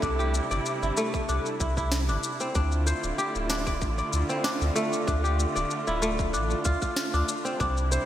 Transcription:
0.00 0.41 C2 loud
0.00 2.51 C3 medium
0.00 2.51 G3 medium
0.00 0.97 A3 loud
0.00 1.04 C4 medium
0.00 2.51 D4 medium
0.00 1.28 D4 medium
0.00 2.51 E4 medium
0.00 kick loud
0.00 shaker soft
0.19 1.60 G4 medium
0.19 shaker soft
0.34 shaker medium
0.51 0.60 G1 medium
0.51 1.62 D5 medium
0.51 shaker soft
0.66 shaker soft
0.82 0.92 G1 medium
0.82 1.60 E4 medium
0.82 shaker soft
0.97 2.97 A3 loud
0.97 shaker medium
1.14 kick loud
1.14 shaker soft
1.29 1.40 C2 loud
1.29 2.08 D4 medium
1.29 shaker soft
1.46 shaker soft
1.60 2.10 C2 medium
1.60 1.77 E4 medium
1.60 kick medium
1.60 shaker medium
1.77 3.34 E4 medium
1.77 kick medium
1.77 shaker soft
1.92 snare medium
1.92 shaker soft
2.09 2.18 G1 loud
2.09 2.55 D4 medium
2.09 shaker soft
2.23 shaker medium
2.40 4.21 C4 medium
2.40 shaker soft
2.55 2.94 D2 loud
2.55 7.57 D3 medium
2.55 7.57 A3 medium
2.55 3.50 D4 medium
2.55 5.06 E4 medium
2.55 7.57 F4 medium
2.55 kick loud
2.55 shaker soft
2.72 shaker soft
2.87 4.05 C5 medium
2.87 shaker medium
3.04 3.13 D1 medium
3.04 shaker soft
3.18 4.59 G4 medium
3.18 shaker soft
3.35 3.83 D1 medium
3.35 shaker soft
3.50 4.44 D4 medium
3.50 snare medium
3.50 shaker medium
3.67 3.98 D5 medium
3.67 kick loud
3.67 shaker soft
3.81 4.02 A1 medium
3.81 kick loud
3.81 shaker soft
3.98 5.09 D5 medium
3.98 shaker soft
4.13 4.24 D2 medium
4.13 shaker medium
4.29 6.09 C4 medium
4.29 shaker soft
4.44 5.07 D4 medium
4.44 snare medium
4.44 shaker soft
4.61 4.71 D2 loud
4.61 shaker soft
4.76 6.02 A3 loud
4.76 shaker medium
4.93 shaker soft
5.07 5.46 D2 loud
5.07 6.33 D4 medium
5.07 8.05 D4 medium
5.07 kick loud
5.07 shaker soft
5.24 6.65 G4 medium
5.24 shaker soft
5.40 shaker medium
5.55 5.66 D1 medium
5.55 6.66 D5 medium
5.55 shaker soft
5.71 shaker soft
5.87 6.36 D1 medium
5.87 6.71 E4 medium
5.87 shaker soft
6.02 8.02 A3 medium
6.02 shaker medium
6.19 kick loud
6.19 shaker soft
6.33 6.55 A1 medium
6.33 7.13 D4 medium
6.33 shaker soft
6.50 shaker soft
6.65 6.76 D2 medium
6.65 6.81 F4 medium
6.65 kick loud
6.65 shaker medium
6.82 8.05 F4 medium
6.82 kick medium
6.82 shaker soft
6.96 snare medium
6.96 shaker soft
7.14 7.23 D2 medium
7.14 7.60 D4 medium
7.14 shaker soft
7.28 shaker medium
7.45 8.05 C4 medium
7.45 shaker soft
7.60 7.99 C2 loud
7.60 8.05 C3 medium
7.60 8.05 G3 medium
7.60 8.05 D4 medium
7.60 8.05 E4 medium
7.60 kick loud
7.60 shaker soft
7.77 shaker soft
7.92 8.05 C5 medium
7.92 shaker medium

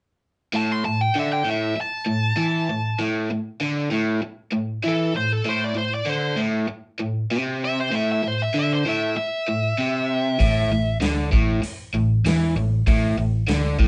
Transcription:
0.54 0.84 A2 medium
0.54 0.72 A5 medium
0.72 0.85 C6 medium
0.85 1.10 A2 medium
0.85 1.00 A5 medium
1.01 1.16 G5 medium
1.15 1.44 D3 medium
1.15 1.32 E5 medium
1.33 1.47 G5 medium
1.45 1.75 A2 medium
1.51 1.78 E5 medium
1.76 muted overdriven electric guitar stroke medium
1.81 2.99 A5 medium
2.06 2.32 A2 medium
2.37 2.68 E3 medium
2.70 2.94 A2 medium
2.99 3.30 A2 medium
3.31 3.56 A2 medium
3.60 3.90 D3 medium
3.91 4.21 A2 medium
4.22 muted overdriven electric guitar stroke medium
4.52 4.78 A2 medium
4.84 5.14 E3 loud
4.88 5.16 A4 medium
5.15 5.40 A2 medium
5.15 5.32 C5 medium
5.32 5.49 A4 medium
5.45 5.74 A2 medium
5.45 5.63 C5 medium
5.64 5.77 D5 medium
5.75 6.01 A2 medium
5.75 5.93 C5 medium
5.94 6.09 D5 medium
6.06 6.37 D3 medium
6.06 6.39 C5 medium
6.37 6.67 A2 medium
6.68 muted overdriven electric guitar stroke medium
7.00 7.25 A2 medium
7.31 7.91 C3 medium
7.65 7.78 E5 medium
7.80 7.94 C5 medium
7.92 8.22 A2 loud
7.92 8.09 E5 medium
8.12 8.25 E5 medium
8.23 8.48 A2 medium
8.28 8.41 C5 medium
8.42 8.56 E5 medium
8.54 8.84 D3 medium
8.59 8.72 E5 medium
8.73 8.86 C5 medium
8.86 9.16 A2 medium
8.86 9.16 E5 medium
9.17 10.98 E5 medium
9.17 muted overdriven electric guitar stroke medium
9.48 9.72 A2 medium
9.78 10.39 C3 medium
10.39 10.68 A1 medium
10.39 10.70 A2 medium
10.39 kick medium
10.39 open hi-hat soft
10.70 10.99 A1 medium
10.70 10.96 A2 medium
11.01 11.30 D2 medium
11.01 11.31 D3 medium
11.01 snare medium
11.01 open hi-hat soft
11.32 11.61 A1 medium
11.32 11.61 A2 medium
11.32 kick loud
11.62 muted overdriven electric guitar stroke medium
11.62 open hi-hat soft
11.93 12.22 A1 medium
11.93 12.19 A2 medium
12.24 12.53 E2 medium
12.24 12.55 E3 medium
12.24 snare loud
12.24 open hi-hat soft
12.56 12.85 A1 medium
12.56 12.81 A2 medium
12.87 13.15 A1 medium
12.87 13.17 A2 medium
12.87 kick medium
12.87 open hi-hat soft
13.18 13.46 A1 medium
13.18 13.42 A2 medium
13.48 13.77 D2 medium
13.48 13.78 D3 medium
13.48 snare medium
13.48 open hi-hat soft
13.79 13.88 A1 medium
13.79 13.88 A2 loud
13.79 kick medium

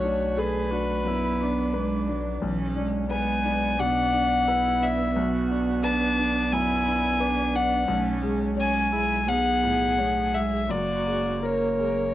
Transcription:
0.00 1.02 B1 medium
0.00 2.39 B1 medium
0.00 1.09 A3 medium
0.00 0.40 F#4 medium
0.00 0.40 C#5 medium
0.04 0.59 D4 medium
0.37 0.72 G#4 medium
0.37 0.92 A4 medium
0.37 2.09 B4 medium
0.71 1.27 D4 medium
0.71 1.08 F#4 medium
1.05 1.60 F#2 medium
1.05 1.76 B3 medium
1.05 1.43 E4 medium
1.40 1.95 D4 medium
1.40 2.44 D4 medium
1.73 2.10 G#3 medium
1.73 2.28 B4 medium
2.08 2.42 F#3 medium
2.08 2.42 D4 medium
2.42 3.75 B1 medium
2.42 7.85 B1 medium
2.42 2.75 E3 medium
2.42 3.10 C#4 medium
2.76 3.10 G#3 medium
2.76 3.31 D4 medium
3.10 3.80 G#3 medium
3.10 3.80 B3 medium
3.10 3.65 B4 medium
3.10 3.81 G#5 loud
3.45 4.00 D4 medium
3.78 4.34 B2 medium
3.78 7.88 B3 medium
3.78 4.49 D4 medium
3.78 4.84 F#5 loud
4.13 4.68 D4 medium
4.47 5.14 E4 medium
4.47 5.03 B4 medium
4.82 5.16 D4 medium
4.82 5.16 E5 loud
5.15 6.48 B1 medium
5.15 5.85 F#4 medium
5.51 6.05 D4 medium
5.83 6.54 D4 medium
5.83 6.38 B4 medium
5.83 6.53 A5 loud
6.18 6.73 D4 medium
6.52 7.07 F#2 medium
6.52 7.22 E4 medium
6.52 7.57 G#5 loud
6.86 7.41 D4 medium
7.20 7.87 D4 medium
7.20 7.75 B4 medium
7.55 7.89 D4 medium
7.55 7.89 F#5 loud
7.87 9.24 B1 medium
7.87 10.72 B1 medium
7.87 8.23 A3 medium
7.87 8.56 C#4 medium
8.22 8.78 G#3 medium
8.22 9.29 G#3 medium
8.56 8.94 C#4 loud
8.56 9.13 C#5 medium
8.56 9.30 G#5 loud
8.91 9.48 G#3 medium
8.91 9.26 E4 medium
9.27 10.66 B1 medium
9.27 10.00 B3 medium
9.27 10.67 G#4 medium
9.27 10.36 F#5 loud
9.63 10.20 A2 medium
9.98 10.36 A3 medium
9.98 10.56 C#5 medium
10.34 10.71 G#3 medium
10.34 10.72 G#3 medium
10.34 10.72 E5 loud
10.69 12.14 F#1 medium
10.69 12.12 F#2 medium
10.69 12.14 A#3 medium
10.69 11.35 F#4 medium
10.69 11.46 D5 loud
11.07 11.66 G#3 medium
11.43 12.01 A#4 medium
11.43 12.14 A#4 medium
11.43 12.14 C#5 medium
11.79 12.14 G#3 medium

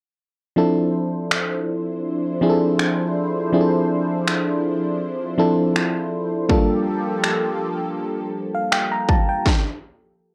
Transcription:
0.56 1.80 F3 medium
0.56 6.46 F3 medium
0.56 1.80 C4 medium
0.56 6.45 D4 medium
0.56 1.80 D4 medium
0.56 6.46 E4 medium
0.56 1.81 E4 medium
0.56 1.81 A4 medium
0.56 6.45 C5 medium
1.31 finger snap loud
2.41 3.35 F3 medium
2.41 3.35 C4 medium
2.41 3.35 D4 medium
2.41 3.36 E4 medium
2.41 2.50 G#4 medium
2.50 3.39 A4 medium
2.79 finger snap loud
3.52 4.76 F3 medium
3.52 4.76 C4 medium
3.52 4.77 D4 medium
3.52 4.77 E4 medium
3.52 3.61 G#4 medium
3.61 4.80 A4 medium
4.28 finger snap loud
5.38 6.31 F3 medium
5.38 6.32 C4 medium
5.38 6.32 D4 medium
5.38 6.32 E4 medium
5.38 6.32 A4 medium
5.76 finger snap loud
6.49 9.43 F3 medium
6.49 7.73 G3 medium
6.49 7.73 A#3 medium
6.49 9.43 A#3 medium
6.49 7.73 D4 medium
6.49 7.73 F4 medium
6.49 9.43 G4 medium
6.49 9.43 A4 medium
6.49 7.73 A4 medium
6.49 kick loud
7.24 finger snap medium
8.55 8.71 F5 medium
8.72 8.91 G5 medium
8.72 finger snap loud
8.92 9.08 A#5 medium
9.09 9.28 A5 medium
9.09 kick medium
9.29 9.64 G5 medium
9.46 kick medium
9.46 snare medium

